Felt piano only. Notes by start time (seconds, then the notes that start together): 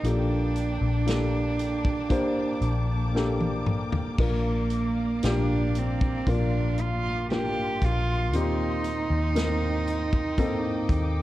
0.04 A#2 A#3 D4 G4 A4
1.06 A#3 D4 G4 A4
2.09 A#3 D4 G4 C5
3.15 A#3 D4 G4 A4
4.19 A#3 D4 F4 A#4
5.23 A#3 D4 F4 G4
6.27 A#3 D4 F4 A#4
7.31 A#3 D4 F4 A#4
8.33 A#2 A#3 C4 D#4 G4
9.35 A#3 C4 D#4 A#4
10.38 A#3 C4 D#4 A4